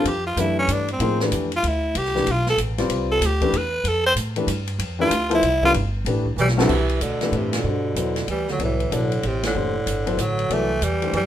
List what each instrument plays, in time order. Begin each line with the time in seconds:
0.04 upright bass F2, tenor saxophone G4, ride
0.27 tenor saxophone F4
0.36 upright bass F#2, upright piano E3 A3 D4 G4 B4, tenor saxophone E4, hi-hat pedal, ride
0.59 tenor saxophone C#4
0.68 upright bass G2, hi-hat pedal, ride
0.72 tenor saxophone D4
0.88 ride
0.93 tenor saxophone C4
0.99 upright bass A2, upright piano F3 A#3 D#4 G#4 C5, ride
1.20 upright piano E3 A3 D4 G4 B4, snare
1.32 upright bass F2, hi-hat pedal, ride
1.52 ride
1.56 tenor saxophone F4
1.63 upright bass D2, ride
1.68 tenor saxophone E4
1.95 upright bass C2, tenor saxophone G4, ride
2.05 snare
2.15 upright piano E3 A3 D4 G4 B4, snare
2.27 upright bass B1, ride
2.31 tenor saxophone F4
2.46 tenor saxophone A4, snare
2.57 upright bass A1, hi-hat pedal, ride
2.78 upright piano G3 C4 F4 B4 D5, snare, ride
2.89 upright bass C2, ride
3.12 tenor saxophone A4
3.20 upright bass D2, snare, hi-hat pedal, ride
3.26 tenor saxophone G4
3.41 upright piano E3 A3 D4 G4 B4, kick, ride
3.52 upright bass E2, ride
3.57 tenor saxophone B4
3.84 upright bass F2, ride
3.88 tenor saxophone A4
4.06 tenor saxophone C5
4.15 upright bass A2, hi-hat pedal, ride
4.36 upright piano E3 A3 D4 G4 B4, ride
4.47 upright bass G2, hi-hat pedal, ride
4.68 ride
4.79 upright bass F2, ride
4.99 upright piano E3 A3 D4 G4 B4, tenor saxophone F4
5.10 upright bass D2, hi-hat pedal, ride
5.30 upright piano F3 B3 E4 A4 C5, ride
5.35 tenor saxophone E4
5.42 upright bass C2, ride
5.62 upright piano E3 A3 D4 G4 B4, tenor saxophone F4, kick
5.74 upright bass G1, ride
6.05 upright bass A1, upright piano E3 A3 D4 G4 B4, ride
6.26 kick
6.36 upright bass B1, bass clarinet E3, hi-hat pedal
6.41 tenor saxophone G3
6.48 snare
6.57 upright piano B1 D3 G3 C4 F#4 A4, bass clarinet C3, tenor saxophone E3, snare
6.69 upright bass C2, kick, crash
6.89 ride
7.00 upright bass D2, bass clarinet B2, tenor saxophone D3, hi-hat pedal, ride
7.21 upright piano E3 A3 D4 G4 B4, snare, ride
7.32 bass clarinet G2, upright bass A2, ride
7.37 tenor saxophone C3
7.53 bass clarinet B2, snare, ride
7.57 tenor saxophone D3
7.64 upright bass G2, upright piano D3 G3 F#4 A4 C5
7.95 upright bass E2, upright piano F#3 B3 E4 A4 C5, hi-hat pedal, ride
8.16 snare, ride
8.28 upright bass D2, bass clarinet E3, tenor saxophone G3, ride
8.48 bass clarinet D3, snare
8.52 tenor saxophone F#3
8.59 upright bass C2, bass clarinet A2, upright piano F#3 B3 E4 A4 D5, ride
8.64 tenor saxophone E3
8.80 ride
8.91 upright bass B1, bass clarinet A2, tenor saxophone D3, upright piano F#3 B3 E4 A4 D5, hi-hat pedal, ride
9.12 ride
9.23 upright bass A1, bass clarinet A2, tenor saxophone C3, ride
9.43 bass clarinet A2, tenor saxophone D3, snare, ride
9.54 upright bass F#1, upright piano E3 A3 D4 G4 C5
9.86 upright bass G1, hi-hat pedal, ride
10.06 upright piano F#3 B3 E4 A4 C5, ride
10.17 upright bass A1, bass clarinet D3, tenor saxophone F#3, hi-hat pedal, ride
10.39 ride
10.50 upright bass C2, bass clarinet E3, upright piano F#3 B3 E4 A4 D5, tenor saxophone A3, ride
10.81 upright bass E2, bass clarinet E3, tenor saxophone G3, hi-hat pedal, ride
11.02 upright piano E3 A3 D4 G4 C5, ride
11.13 upright bass F#2, bass clarinet E3, tenor saxophone G3, ride